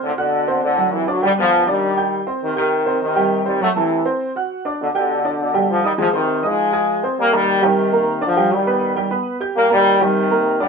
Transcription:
<<
  \new Staff \with { instrumentName = "Upright piano" } { \time 4/4 \key c \minor \tempo 4 = 202 <c' c'' c'''>8 <fis' fis'' fis'''>4 <c' c'' c'''>4 <fis fis' fis''>4 <d' d'' d'''>8 | <g g' g''>8 <b b' b''>4 <d' d'' d'''>4 <g' g'' g'''>4 <c' c'' c'''>8~ | <c' c'' c'''>8 <g' g'' g'''>4 <c' c'' c'''>4 <g g' g''>4 <c' c'' c'''>8 | <fis fis' fis''>8 <a a' a''>4 <c' c'' c'''>4 <fis' fis'' fis'''>4 <d' d'' d'''>8~ |
<d' d'' d'''>8 <g' g'' g'''>4 <d' d'' d'''>4 <g g' g''>4 <ees' ees'' ees'''>8 | <aes aes' aes''>8 <c' c'' c'''>4 <ees' ees'' ees'''>4 <aes' aes'' aes'''>4 <c' c'' c'''>8 | r8 <bes bes' bes''>4 <g g' g''>4 <bes bes' bes''>4 <d' d'' d'''>8 | <g g' g''>4 <b b' b''>4 <g g' g''>8 <b b' b''>4 <g' g'' g'''>8~ |
<g' g'' g'''>8 <bes bes' bes''>4 <g g' g''>4 <bes bes' bes''>4 <d' d'' d'''>8 | }
  \new Staff \with { instrumentName = "Trombone section" } { \clef bass \time 4/4 \key c \minor <a, d>8 <b, d>4. <a, d>4 <c e>8 <d fis>8 | <d g>8 <d f>4 <ees g>2 r8 | <c ees>8 <c ees>4. <c ees>4. <ees g>8 | <fis a>8 <c e>4 r2 r8 |
<b, d>8 <b, d>4. <b, d>4 <d f>8 <ees g>8 | <c f>8 <c ees>4 <f aes>2 r8 | <g bes>8 <ees g>4 <c ees>2 <d f>8~ | <d f>8 <ees g>2 r4. |
<g bes>8 <ees g>4 <c ees>2 <d g>8 | }
>>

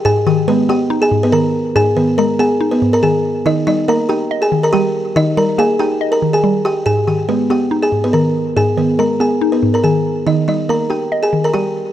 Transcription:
<<
  \new Staff \with { instrumentName = "Kalimba" } { \time 4/4 \key gis \minor \tempo 4 = 141 <gis' gis''>8 <g' g''>8 <b b'>8 <g' g''>8. <gis' gis''>8 <b b'>16 <ais' ais''>8 r8 | <gis' gis''>8 <b b'>8 <ais' ais''>8 <gis' gis''>8. <b b'>8 <ais' ais''>16 <gis' gis''>8 r8 | <dis' dis''>8 <dis' dis''>8 <ais' ais''>8 <g' g''>8. <gis' gis''>8 <ais' ais''>16 <g' g''>8 r8 | <dis' dis''>8 <ais' ais''>8 <gis' gis''>8 <g' g''>8. <ais' ais''>8 <gis' gis''>8. <g' g''>8 |
<gis' gis''>8 <g' g''>8 <b b'>8 <g' g''>8. <gis' gis''>8 <b b'>16 <ais' ais''>8 r8 | <gis' gis''>8 <b b'>8 <ais' ais''>8 <gis' gis''>8. <b b'>8 <ais' ais''>16 <gis' gis''>8 r8 | <dis' dis''>8 <dis' dis''>8 <ais' ais''>8 <g' g''>8. <gis' gis''>8 <ais' ais''>16 <g' g''>8 r8 | }
  \new Staff \with { instrumentName = "Synth pluck" } { \clef bass \time 4/4 \key gis \minor gis,8 dis8 gis8 b8 dis'8 gis,8 dis4 | gis,8 dis8 gis8 b8 dis'8 gis,8 dis4 | dis8 g8 ais8 dis'8 dis''8 dis8 g4 | dis8 g8 ais8 dis'8 dis''8 dis8 g4 |
gis,8 dis8 gis8 b8 dis'8 gis,8 dis4 | gis,8 dis8 gis8 b8 dis'8 gis,8 dis4 | dis8 g8 ais8 dis'8 dis''8 dis8 g4 | }
>>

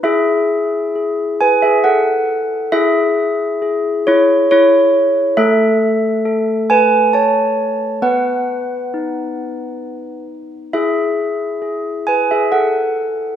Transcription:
\new Staff \with { instrumentName = "Handbells" } { \time 3/4 \key e \major \tempo 4 = 67 << { <gis' e''>4. <b' gis''>16 <gis' e''>16 <a' fis''>4 | <gis' e''>4. <e' cis''>8 <e' cis''>4 | <a' e''>4. <b' gis''>8 <cis'' a''>4 | <b' fis''>2~ <b' fis''>8 r8 |
<gis' e''>4. <b' gis''>16 <gis' e''>16 <a' fis''>4 | } \\ { e'4 gis'2 | e'4 gis'2 | a4 a'2 | b4 dis'2 |
e'4 gis'2 | } >> }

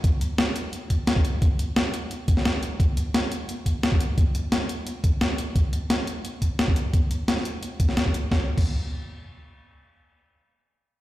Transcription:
\new DrumStaff \with { instrumentName = "Drums" } \drummode { \time 4/4 \tempo 4 = 174 <hh bd>8 hh8 <hh sn>8 hh8 hh8 <hh bd>8 <hh sn>16 bd16 hh8 | <hh bd>8 hh8 <hh sn>8 hh8 hh8 <hh bd>16 sn16 <hh sn>8 hh8 | <hh bd>8 hh8 <hh sn>8 hh8 hh8 <hh bd>8 <hh sn>16 bd16 hh8 | <hh bd>8 hh8 <hh sn>8 hh8 hh8 <hh bd>8 <hh sn>8 hh8 |
<hh bd>8 hh8 <hh sn>8 hh8 hh8 <hh bd>8 <hh sn>16 bd16 hh8 | <hh bd>8 hh8 <hh sn>16 sn16 hh8 hh8 <hh bd>16 sn16 <hh sn>16 bd16 hh8 | <bd sn>8. <cymc bd>16 r4 r4 r4 | r4 r4 r4 r4 | }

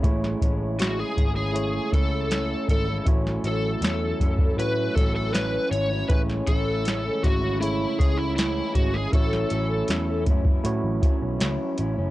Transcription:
<<
  \new Staff \with { instrumentName = "Electric slide guitar" } { \time 4/4 \key a \major \tempo 4 = 79 r4 fis'16 gis'8 gis'8. a'4 a'8 | r8 a'4. b'8 a'16 a'16 b'8 cis''8 | b'8 a'4 fis'8 e'8 gis'16 e'16 e'8 fis'16 gis'16 | a'4. r2 r8 | }
  \new Staff \with { instrumentName = "Tine electric piano" } { \time 4/4 \key a \major <a e' gis' cis''>4. r8 <a e' cis'' gis''>4. r8 | <a e' fis' cis''>4. r8 <a e' fis' cis''>4. r8 | <a e' cis'' gis''>4. r8 <a e' gis' cis''>4. r8 | <a e' fis' cis''>4. r8 <a e' fis' cis''>4. r8 | }
  \new Staff \with { instrumentName = "Clean electric guitar" } { \time 4/4 \key a \major <a, gis cis' e'>8 <a, gis cis' e'>8 <a, gis cis' e'>16 <gis cis' e'>16 <a, gis cis' e'>16 <gis cis' e'>8. <a, cis' e'>8 <a, cis' e'>8 <a, gis cis' e'>16 <gis cis' e'>16 | <a, fis cis' e'>8 <a, fis cis' e'>8 <a, fis cis' e'>16 <fis cis' e'>16 <a, fis cis' e'>16 <fis cis' e'>8. <a, fis cis' e'>8 <a, fis cis' e'>8 <a, fis cis' e'>16 <fis cis' e'>16 | <a, gis cis' e'>8 <a, cis' e'>8 <a, gis cis' e'>16 <gis cis' e'>16 <a, gis cis' e'>16 <gis cis' e'>8. <a, gis cis' e'>8 <a, gis cis' e'>8 <a, gis cis' e'>16 <gis cis' e'>16 | <a, fis cis' e'>8 <a, fis cis' e'>8 <a, fis cis' e'>16 <fis cis' e'>16 <a, fis cis' e'>16 <fis cis' e'>8. <a, fis cis' e'>8 <a, fis cis' e'>8 <a, fis cis' e'>16 <fis cis' e'>16 | }
  \new Staff \with { instrumentName = "Ambient pad" } { \clef bass \time 4/4 \key a \major << { cis'1~ | cis'1~ | cis'1~ | cis'1 | } \\ { <cis e>1 | <e fis>1 | <cis e>1 | <e fis>1 | } >> }
  \new Staff \with { instrumentName = "Picked electric bass" } { \clef bass \time 4/4 \key a \major a,,8 a,,4 gis,,4 cis,4 gis,,8 | a,,8 a,,8 e,8 fis,8 a,8 a,,4 gis,,8 | a,,8 a,,4 gis,,4 cis,4 gis,,8 | a,,8 a,,8 e,8 fis,8 a,16 a,,16 r16 b,,16 cis,16 r16 a,,16 fis,,16 | }
  \new DrumStaff \with { instrumentName = "Drums" } \drummode { \time 4/4 <hh bd>16 sn16 <hh bd>8 <hh sn>8 <hh bd>8 hh8 <hh bd>8 <hh sn>8 <hh bd>8 | <hh bd>16 sn16 hh8 <hh sn>8 <hh bd>16 bd16 hh8 <hh bd>8 <hh sn>8 hh8 | <hh bd>16 sn16 <hh bd>8 <hh sn>8 <hh bd>8 hh8 <hh bd>8 <hh sn>8 <hh bd>8 | <hh bd>16 sn16 hh8 <hh sn>8 <hh bd>16 bd16 hh8 <hh bd>8 <hh sn>8 hh8 | }
>>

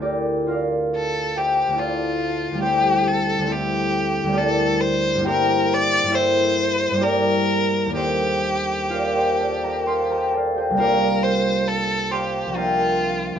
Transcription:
<<
  \new Staff \with { instrumentName = "Harp" } { \time 3/4 \key d \minor \tempo 4 = 68 << { <g' a' bes' d''>8 <f' bes' d'' f''>4 <g' c'' e'' g''>8 <a' d'' f'' a''>4 | <g' c'' e'' g''>4 <a' c'' e''>4 <g' bes' d''>4 | <g' c'' e'' g''>4 <a' c'' e''>4 <g' bes' d''>4 | <a' c'' ees''>4 <f' bes' d'' f''>16 <g' c'' ees'' g''>16 <a' d'' f'' a''>16 <bes' ees'' g'' bes''>16 <c'' f'' a'' c'''>16 <bes' ees'' g'' bes''>16 <a' d'' f'' a''>16 <g' c'' ees'' g''>16 |
<f' bes' d'' f''>4. <c'' f'' a'' c'''>8 <bes' e'' g'' bes''>4 | } \\ { f'2. | r2. | r2. | r2. |
r2. | } >> }
  \new Staff \with { instrumentName = "Harp" } { \time 3/4 \key d \minor <d, a d' e'>2 <d, a d' e'>4 | <d, g a c' e'>4 <d, g a c' e'>4 <d, g a c' e'>4 | <g, g bes e'>4 <g, g bes e'>4 <g, g bes e'>4 | <ees, g bes d'>2. |
<c, g bes d'>2 <c, f g bes d'>4 | }
  \new Staff \with { instrumentName = "Violin" } { \time 3/4 \key d \minor r4 a'8 g'8 f'4 | g'8 a'8 g'4 a'8 c''8 | bes'8 d''8 c''4 bes'4 | g'2~ g'8 r8 |
bes'8 c''8 a'8 g'8 f'4 | }
>>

